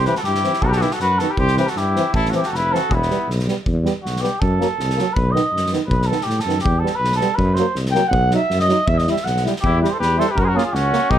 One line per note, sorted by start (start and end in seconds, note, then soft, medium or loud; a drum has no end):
0.05 0.14 E3 medium
0.05 0.13 C4 medium
0.05 0.16 G4 medium
0.05 0.15 B4 medium
0.05 snare soft
0.15 0.20 F#4 medium
0.15 0.21 A4 medium
0.15 snare soft
0.24 0.45 G2 medium
0.24 0.66 E4 medium
0.24 0.64 G4 loud
0.24 snare soft
0.35 snare soft
0.44 0.51 E3 medium
0.44 0.51 C4 medium
0.44 snare soft
0.53 snare soft
0.62 0.83 B1 loud
0.62 0.69 F#4 medium
0.62 0.68 A4 loud
0.62 kick medium
0.67 0.78 G4 medium
0.67 0.73 B4 medium
0.72 0.82 A4 medium
0.72 snare soft
0.77 0.84 F#4 loud
0.81 0.88 D#3 medium
0.81 0.89 B3 medium
0.81 0.94 E4 medium
0.81 0.94 G4 medium
0.81 snare soft
0.91 1.00 F#4 medium
0.91 1.00 A4 medium
0.91 snare soft
1.00 1.21 F#2 medium
1.00 1.21 F#4 medium
1.00 1.20 B4 loud
1.00 snare soft
1.19 1.28 D#3 medium
1.19 1.28 B3 medium
1.19 1.31 F#4 medium
1.19 1.32 A4 loud
1.19 snare soft
1.29 1.38 G4 medium
1.29 1.40 B4 medium
1.37 1.58 C2 loud
1.37 1.58 G4 loud
1.37 1.59 C5 loud
1.37 kick medium
1.48 snare soft
1.57 1.65 E3 medium
1.57 1.66 C4 medium
1.57 1.71 G4 medium
1.57 1.68 B4 medium
1.57 snare soft
1.67 1.79 F#4 medium
1.67 1.79 A4 medium
1.67 snare soft
1.76 1.97 G2 medium
1.76 2.14 E4 medium
1.76 2.14 G4 loud
1.76 snare soft
1.96 2.04 E3 medium
1.96 2.03 C4 medium
1.96 snare soft
2.13 2.34 A1 loud
2.13 2.32 E4 loud
2.13 2.32 A4 loud
2.13 kick loud
2.25 snare soft
2.30 2.41 E3 medium
2.30 2.41 C4 medium
2.30 2.37 F#4 soft
2.30 2.37 A4 medium
2.30 snare soft
2.35 2.47 E4 medium
2.35 2.47 G4 medium
2.43 2.59 F#4 medium
2.43 2.56 A4 medium
2.43 snare soft
2.51 2.72 F1 medium
2.51 2.74 B4 loud
2.51 snare soft
2.57 2.77 E4 medium
2.71 2.79 E3 medium
2.71 2.79 C4 medium
2.71 2.94 A4 loud
2.71 snare soft
2.76 2.98 F#4 medium
2.89 3.10 E1 loud
2.89 3.29 E4 loud
2.89 kick medium
2.96 3.31 B3 medium
3.02 snare soft
3.10 3.17 G3 medium
3.10 3.17 B3 medium
3.10 snare soft
3.28 3.48 B1 medium
3.28 snare soft
3.39 snare soft
3.48 3.55 G3 medium
3.48 3.56 B3 medium
3.48 snare soft
3.66 3.87 E2 loud
3.66 kick medium
3.84 3.92 G3 medium
3.84 3.92 B3 medium
3.84 snare soft
4.03 4.25 B1 medium
4.03 4.22 F#4 medium
4.03 snare soft
4.16 snare soft
4.21 4.30 G3 medium
4.21 4.29 B3 medium
4.21 4.41 G4 medium
4.21 snare soft
4.40 4.62 F#2 loud
4.40 5.15 A4 medium
4.40 kick medium
4.60 4.68 F#3 medium
4.60 4.67 A#3 medium
4.60 snare soft
4.79 4.99 C2 medium
4.79 snare soft
4.90 snare soft
4.96 5.07 F#3 medium
4.96 5.04 A#3 medium
4.96 snare soft
5.13 5.37 B1 loud
5.13 5.33 B4 loud
5.13 kick loud
5.32 5.42 D#3 medium
5.32 5.41 B3 medium
5.32 5.71 D#5 loud
5.36 snare soft
5.52 5.73 F#2 medium
5.57 snare soft
5.66 snare soft
5.72 5.80 D#3 medium
5.72 5.80 B3 medium
5.72 snare soft
5.86 6.09 B1 loud
5.86 6.08 B4 medium
5.91 kick medium
6.02 snare soft
6.06 6.17 D#3 medium
6.06 6.18 B3 medium
6.06 6.25 A4 medium
6.12 snare soft
6.21 6.41 G4 medium
6.21 snare soft
6.26 6.44 A2 medium
6.26 snare soft
6.40 6.60 A4 medium
6.40 snare soft
6.45 6.63 F#2 medium
6.45 6.55 D#3 medium
6.45 6.55 B3 medium
6.49 snare soft
6.59 6.81 G4 medium
6.59 snare soft
6.64 6.85 E2 loud
6.64 kick loud
6.79 6.90 G3 medium
6.79 6.97 A4 medium
6.83 6.91 B3 medium
6.83 snare soft
6.95 7.15 B4 loud
7.00 7.21 B1 medium
7.04 snare soft
7.12 7.37 A4 loud
7.12 snare soft
7.20 7.29 G3 medium
7.20 7.28 B3 medium
7.20 snare soft
7.35 7.59 F#2 loud
7.35 7.55 B4 medium
7.35 kick medium
7.54 7.65 F#3 medium
7.54 7.75 C5 medium
7.54 snare soft
7.59 7.66 A#3 medium
7.75 7.96 C2 medium
7.75 snare soft
7.86 snare soft
7.91 8.03 F#3 medium
7.91 8.03 A#3 medium
7.91 8.09 G5 loud
7.91 snare soft
8.08 8.32 B1 loud
8.08 8.34 F#5 loud
8.13 kick medium
8.31 8.40 F#3 medium
8.31 8.41 D#4 medium
8.31 8.60 E5 loud
8.31 snare soft
8.50 8.71 F#2 loud
8.50 snare soft
8.60 8.88 D#5 loud
8.60 snare soft
8.68 8.76 F#3 medium
8.68 8.78 D#4 medium
8.68 snare soft
8.87 9.08 E2 loud
8.87 8.99 E5 loud
8.87 kick loud
8.98 9.10 D#5 loud
8.98 snare soft
9.07 9.16 G3 medium
9.07 9.15 E4 medium
9.07 9.25 E5 medium
9.07 snare soft
9.17 snare soft
9.24 9.45 B1 loud
9.24 9.44 F#5 loud
9.24 snare soft
9.37 snare soft
9.44 9.54 G3 medium
9.44 9.52 E4 medium
9.44 snare soft
9.56 snare soft
9.61 9.83 E2 loud
9.61 9.79 G4 loud
9.61 kick medium
9.65 9.82 E4 medium
9.80 9.89 G3 medium
9.80 9.88 E4 medium
9.80 9.95 G4 medium
9.80 9.90 B4 medium
9.85 9.99 C5 medium
9.85 snare soft
9.93 9.99 A4 medium
9.99 10.20 E2 medium
9.99 10.21 G4 medium
9.99 10.19 B4 loud
9.99 snare soft
10.17 10.26 G3 medium
10.17 10.25 E4 medium
10.17 10.33 A4 medium
10.17 10.30 C5 loud
10.17 snare soft
10.28 10.41 G4 medium
10.28 10.38 B4 medium
10.35 10.56 F#2 medium
10.35 10.44 A#4 loud
10.35 kick loud
10.40 10.46 F#4 medium
10.40 10.48 C5 medium
10.45 10.59 F#4 medium
10.45 10.50 G#4 medium
10.45 10.57 A#4 loud
10.55 10.63 A#3 medium
10.55 10.62 C#4 medium
10.55 10.64 F4 medium
10.55 10.65 G#4 medium
10.55 snare soft
10.65 10.76 F4 medium
10.65 10.75 G#4 medium
10.73 10.94 C#2 medium
10.73 11.12 C#4 medium
10.73 11.11 F#4 loud
10.73 snare soft
10.92 11.00 A#3 medium
10.92 10.99 C#4 medium
10.92 snare soft
11.10 11.19 B1 loud
11.10 11.19 D#4 loud
11.10 11.19 G4 loud
11.10 kick medium